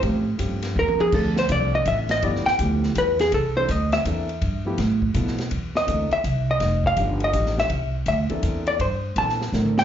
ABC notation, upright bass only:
X:1
M:3/4
L:1/8
Q:"Swing" 1/4=164
K:Cmix
V:1 name="Upright bass" clef=bass
A,,2 G,,2 _E,, z | D,,2 C,,2 A,,,2 | G,,, z D,,2 E,,2 | C,,2 D,,2 E,,2 |
G,,2 A,,2 =B,,2 | E,,2 D,, z C,,2 | F,,,2 G,,,2 A,,,2 | C,,2 D,, z E,,2 |
G,,2 B,,2 A,,2 |]